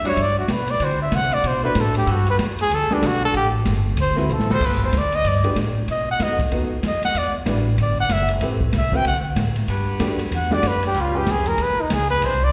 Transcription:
Already playing: upright bass F#2
0.04 saxophone section E3 G3 D4 F#4, grand piano G3 D4 E4 F#4 D5, trumpet C#5, ride
0.17 upright bass G2, kick, ride
0.22 trumpet D5
0.39 trumpet F#4
0.48 upright bass B2, trumpet B4, kick, snare, hi-hat pedal, ride
0.68 trumpet D5, ride
0.80 upright bass D3, saxophone section E3 C4 D4 F#4, kick, ride
0.84 trumpet C5
1.02 trumpet E5
1.12 upright bass C3, trumpet F#5, kick, snare, hi-hat pedal, ride
1.31 trumpet D5, ride
1.44 upright bass B2, trumpet C5, kick, ride
1.63 grand piano A3 D4 E4 F#4 C5, trumpet B4
1.75 upright bass A2, kick, snare, hi-hat pedal, ride
1.80 trumpet A4
1.95 trumpet G4, ride
2.07 upright bass G2, saxophone section G3 B3 F#4 A4, kick, ride
2.11 trumpet F#4
2.26 trumpet B4, ride
2.39 upright bass F#2, kick, snare, hi-hat pedal, ride
2.59 trumpet G#4, ride
2.70 upright bass D2, kick, ride
2.74 trumpet A4
2.90 grand piano A3 D4 F#4 G4 B4, muted upright bass stroke, snare
2.94 trumpet D4
3.02 upright bass B1, kick, snare, hi-hat pedal, ride
3.07 trumpet F#4
3.25 trumpet A4
3.33 upright bass A1, trumpet G4, kick, ride
3.65 upright bass G1, kick, snare, hi-hat pedal, ride
3.97 upright bass D2, kick, ride
4.01 trumpet C5
4.16 grand piano A3 C4 E4 F#4 B4, trumpet E4, snare
4.29 upright bass B1, hi-hat pedal
4.33 trumpet A4
4.40 upright bass A1, snare
4.50 upright bass F#1, saxophone section G3 B3 F#4 A4, trumpet C5, snare
4.60 upright bass G1, kick, crash
4.65 trumpet B4
4.85 trumpet C5
4.92 upright bass D2, kick, snare, hi-hat pedal, ride
4.98 trumpet D5
5.12 trumpet D#5, ride
5.24 upright bass G2, trumpet D5, kick, ride
5.44 grand piano A3 D4 F#4 G4 B4, ride
5.55 upright bass A2, kick, snare, hi-hat pedal, ride
5.88 upright bass B2, trumpet D#5, kick, ride
6.11 trumpet F#5
6.19 upright bass F#2, grand piano A3 B3 D#4 F#4 B4, trumpet D#5, kick, snare, hi-hat pedal, ride
6.39 kick, ride
6.51 upright bass D#2, grand piano A3 B3 D#4 F#4 B4, kick, ride
6.69 muted upright bass stroke
6.83 upright bass F#2, kick, snare, hi-hat pedal, ride
6.87 trumpet D#5
6.94 snare
7.02 trumpet F#5, muted upright bass stroke, snare, ride
7.14 upright bass E2, trumpet D5, kick, ride
7.45 upright bass A1, grand piano G3 D4 E4 F#4 B4, kick, snare, hi-hat pedal, ride
7.78 upright bass G1, kick, ride
7.82 trumpet D5
8.00 trumpet F#5
8.09 upright bass F#1, trumpet E5, kick, snare, hi-hat pedal, ride
8.29 ride
8.41 upright bass A1, grand piano A3 C4 E4 G4 B4, kick, snare, ride
8.60 kick
8.73 upright bass C2, kick, snare, hi-hat pedal, ride
8.78 trumpet E5
8.92 grand piano A3 C4 E4 F#4 B4, trumpet G5, kick
9.04 upright bass D2, trumpet F#5, kick, ride
9.35 upright bass A2, kick, snare, hi-hat pedal, ride
9.56 ride
9.68 upright bass G2, saxophone section D4 F#4 G4 B4, kick, ride
10.00 upright bass F#2, grand piano A3 D4 F#4 G4 B4, kick, snare, hi-hat pedal, ride
10.19 ride
10.31 upright bass E2, kick, ride
10.35 trumpet F#5
10.51 grand piano A3 D4 F#4 G4 D5, trumpet D5, snare
10.63 upright bass F#2, kick, snare, hi-hat pedal, ride
10.68 trumpet B4
10.83 trumpet G4, ride
10.94 upright bass C#2, saxophone section G3 C#4 F4 B4, kick, ride
11.00 trumpet F4
11.14 grand piano G#3 C#4 F4 G4 B4, trumpet G4
11.26 upright bass F2, kick, snare, hi-hat pedal, ride
11.31 trumpet G#4
11.46 trumpet A#4, ride
11.58 upright bass D#2, kick, ride
11.62 trumpet B4
11.81 trumpet D#4
11.90 upright bass C#2, trumpet G#4, kick, snare, hi-hat pedal, ride
12.10 trumpet B4
12.21 upright bass C2, saxophone section F#3 D4 E4 B4, trumpet C5, kick, ride
12.44 trumpet D5

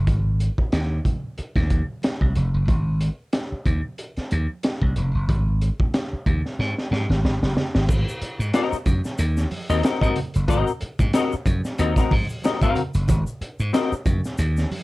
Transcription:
0.07 slap bass G#1, kick, closed hi-hat, muted conga
0.40 closed hi-hat, muted conga
0.58 kick
0.72 slap bass D#2, snare, closed hi-hat
1.05 kick, closed hi-hat, muted conga, high conga, low conga
1.38 muted slap bass stroke, closed hi-hat
1.56 slap bass D#2, kick, snare, closed hi-hat
1.70 kick, closed hi-hat, high conga
2.02 snare, closed hi-hat, muted conga
2.21 slap bass C2, kick, high conga
2.35 slap bass F1, closed hi-hat, low conga
2.54 slap bass F#1
2.68 slap bass G#1, kick, closed hi-hat
3.01 closed hi-hat
3.33 snare, closed hi-hat
3.52 muted slap bass stroke
3.66 slap bass D#2, kick, closed hi-hat, high conga, low conga
3.98 closed hi-hat
4.17 muted slap bass stroke, snare, closed hi-hat
4.31 slap bass D#2, closed hi-hat, muted conga, high conga
4.63 snare, closed hi-hat, muted conga
4.82 slap bass C2, kick, high conga
4.96 slap bass F1, closed hi-hat, muted conga, low conga
5.15 slap bass F#1
5.29 slap bass G#1, kick, closed hi-hat, muted conga
5.61 closed hi-hat, muted conga
5.80 kick
5.94 snare, closed hi-hat
6.13 muted slap bass stroke
6.26 slap bass D#2, kick, closed hi-hat, high conga, low conga
6.46 snare
6.59 slap bass G#2, snare, muted conga
6.78 snare
6.91 slap bass G#2, snare, high conga
7.10 slap bass G#1, snare
7.24 slap bass G#1, snare, muted conga
7.42 slap bass F#1, snare, high conga
7.57 snare, muted conga, low conga
7.75 slap bass G#1, snare
7.89 slap bass G#1, kick, crash, low conga, shaker
8.09 shaker
8.21 muted slap bass stroke, closed hi-hat, muted conga
8.39 slap bass G#2, shaker
8.54 clean electric guitar C4 F#4 A#4 D#5, snare, closed hi-hat, muted conga, shaker
8.72 muted slap bass stroke, shaker
8.86 slap bass F#2, kick, closed hi-hat, high conga, low conga, shaker
9.04 snare, shaker
9.18 slap bass D#2, closed hi-hat, muted conga, shaker
9.37 snare, shaker
9.51 open hi-hat, high conga
9.70 slap bass D#2, clean electric guitar C4 F#4 A#4 D#5, shaker
9.83 clean electric guitar C4 F#4 A#4 D#5, snare, closed hi-hat, shaker
10.01 slap bass G#2, clean electric guitar C4 F#4 A#4 D#5, kick, high conga, shaker
10.16 closed hi-hat, muted conga, low conga
10.34 slap bass F#1, closed hi-hat, shaker
10.48 slap bass G#1, clean electric guitar C4 F#4 A#4 D#5, kick, closed hi-hat, muted conga, low conga, shaker
10.67 shaker
10.80 muted slap bass stroke, closed hi-hat, muted conga
10.99 slap bass G#2, kick, shaker
11.13 clean electric guitar C4 F#4 A#4 D#5, snare, closed hi-hat, shaker
11.32 muted slap bass stroke, shaker
11.46 slap bass F#2, kick, closed hi-hat, muted conga, high conga, low conga, shaker
11.65 snare, shaker
11.78 slap bass D#2, clean electric guitar C4 F#4 A#4 D#5, closed hi-hat, shaker
11.96 clean electric guitar C4 F#4 A#4 D#5, kick, snare, closed hi-hat, shaker
12.11 slap bass G#2, kick, open hi-hat, muted conga, high conga
12.29 shaker
12.42 clean electric guitar C4 F#4 A#4 D#5, snare, closed hi-hat, muted conga, shaker
12.62 slap bass G#2, clean electric guitar C4 F#4 A#4 F5, kick, high conga, shaker
12.75 closed hi-hat, muted conga, low conga
12.94 slap bass F#1, closed hi-hat, shaker
13.08 slap bass G#1, kick, closed hi-hat, muted conga, low conga, shaker
13.27 shaker
13.41 muted slap bass stroke, closed hi-hat
13.59 slap bass G#2, shaker
13.73 clean electric guitar C4 F#4 A#4 D#5, snare, closed hi-hat, shaker
13.92 muted slap bass stroke, shaker
14.06 slap bass F#2, kick, closed hi-hat, high conga, low conga, shaker
14.24 snare, shaker
14.38 slap bass D#2, closed hi-hat, muted conga, shaker
14.57 snare, shaker
14.71 open hi-hat, muted conga, high conga

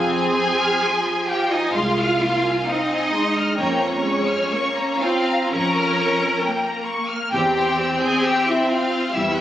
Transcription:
Already playing: double bass section F2, viola section C4, cello section G#4, violin section G#5
0.10 violin section G#5
0.33 violin section C6
0.58 violin section F6
0.81 viola section F3, violin section C6
1.05 violin section G#5
1.27 cello section G4, violin section F5 G5
1.51 cello section D#4, violin section D#5 G#5
1.73 double bass section C2, viola section G#3, cello section F4, violin section F5 C6
1.98 violin section F6
2.21 viola section A#3, violin section C6
2.44 violin section G#5
2.66 viola section C4, cello section D#4, violin section D#5 F5
2.90 violin section G#5
3.12 viola section G#3, violin section C6
3.35 violin section F6
3.57 double bass section F2, viola section A#3, cello section C#4, violin section C#5 G5 A#5
3.81 violin section A#5
4.04 viola section G#3, violin section C#6
4.26 violin section F6
4.51 viola section A#3, violin section C#6
4.75 violin section A#5
5.01 viola section C4, cello section F4, violin section F5 G5
5.27 violin section A#5
5.51 double bass section F2, viola section C#4, cello section A#4, violin section A#5 C#6
5.76 violin section F6
5.99 violin section C#6
6.21 violin section A#5
6.43 viola section A#3, violin section G5
6.64 violin section A#5
6.84 violin section C#6
7.08 violin section F6
7.31 double bass section E2, viola section C4, cello section G4, violin section G5
7.55 violin section C6
7.78 violin section E6
8.01 cello section G#4, violin section G#5 G6
8.24 cello section G4, violin section G5 E6
8.47 cello section E4, violin section E5 C6
8.69 cello section F4, violin section F5 G5
8.91 violin section C6
9.12 double bass section E2, viola section G3, cello section E4, violin section E5 E6
9.35 violin section G6

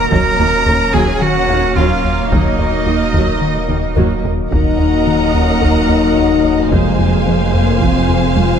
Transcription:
Already playing: ambient pad F#3 A#3 A#4 D#5, cello A#4, violin section A#5
0.11 sub bass D#1, analog synth bass D#2, double bass section D#2, cello section D#2, synth pluck F#3, viola section F#3 C#4, ambient pad F#3 A#3 A#4 C#5, cello A#4, violin section A#5, taiko
0.39 analog synth bass D#2, double bass section D#2, cello section D#2, viola section C#3, synth pluck F#4
0.66 analog synth bass D#2, double bass section D#2, cello section D#2, viola section C#3, synth pluck A#3
0.94 analog synth bass D#2, double bass section D#2, cello section D#2, viola section F#3, synth pluck F#3, cello G#4, violin section G#5, taiko
1.22 analog synth bass D#3, cello F#4, violin section F#5
1.49 analog synth bass D#2, double bass section D#2, cello section D#2, viola section C#3, synth pluck F#4
1.76 double bass section D#2, analog synth bass D#2, cello section D#2, synth pluck F#3, viola section F#3, cello F4, violin section F5
2.04 analog synth bass D#2
2.31 cello section D#2, double bass section D#2, analog synth bass D#2, synth pluck D#3, viola section F#3 A#3, cello D#4, ambient pad D#5, violin section D#5, taiko
2.59 cello section D#2, analog synth bass D#2, double bass section D#2, viola section D#3, synth pluck D#4
2.86 cello section D#2, analog synth bass D#2, double bass section D#2, viola section D#3, synth pluck F#3
3.14 analog synth bass D#2, double bass section D#2, cello section D#2, synth pluck D#3, viola section F#3, taiko
3.42 analog synth bass D#3
3.69 analog synth bass D#2, cello section D#2, double bass section D#2, viola section D#3, synth pluck D#4, taiko mid
3.96 analog synth bass D#2, cello section D#2, double bass section D#2, synth pluck D#3, viola section F#3, taiko low-mid
4.25 analog synth bass D#2, taiko low
4.51 sub bass D#1, double bass section D#2, analog synth bass D#2, cello section D#2, synth pluck D#3, ambient pad F#3 A#3 A#4 D#5, french horn section D#4, viola section A#4 D#5, violin section F#5 A#5, taiko
4.79 analog synth bass D#2, synth pluck D#4
5.06 analog synth bass D#3, synth pluck A#3
5.34 analog synth bass D#2, french horn section C#4
5.62 analog synth bass D#2, synth pluck D#3, french horn section D#4, taiko
5.89 analog synth bass D#2, synth pluck D#4
6.17 analog synth bass D#2, synth pluck F#3
6.44 analog synth bass D#2, synth pluck D#4
6.72 double bass section F1, sub bass F1, analog synth bass F2, cello section F2, synth pluck F3, ambient pad F3 C4 G#4 C5, french horn section G#3, viola section C5, violin section F5 G#5, taiko
6.99 analog synth bass F2, synth pluck F4
7.26 analog synth bass F3, synth pluck C4
7.54 analog synth bass F2, french horn section A#3
7.81 analog synth bass F2, synth pluck F3, french horn section C4, taiko
8.09 analog synth bass F2, synth pluck F4
8.36 analog synth bass F2, synth pluck G#3, french horn section F4

